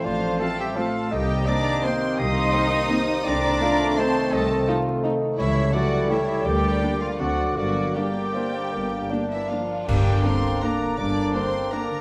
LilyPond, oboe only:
\new Staff \with { instrumentName = "Oboe" } { \time 3/4 \key f \major \tempo 4 = 164 c''4 f''8 e''8 f''4 | \key g \minor ees''4 bes''4 g''4 | c'''2~ c'''16 r8. | bes''2 a''4 |
ees''4 r2 | cis''4 d''4 cis''4 | d''4. d''8 d''4 | d''4 d''2~ |
d''2 r4 | d''2 d''4 | d''2 d''4 | }